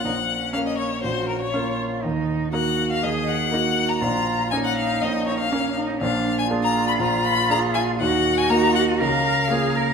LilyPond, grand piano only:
\new Staff \with { instrumentName = "Grand piano" } { \time 4/4 \key bes \minor \tempo 4 = 120 <bes,, bes,>4 <bes des' bes'>4 <bes,, bes,>4 <bes des' bes'>4 | <ees, ees>4 <bes ees' bes'>4 <ees, ees>4 <bes ees' bes'>4 | <bes,, bes,>4 <bes des' bes'>4 <bes,, bes,>4 <bes des' bes'>4 | <bes,, bes,>4 <bes d' aes'>4 <bes,, bes,>4 <bes d' aes'>4 |
<ees, ees>4 <bes ees' bes'>4 <des, des>4 <bes f' bes'>4 | }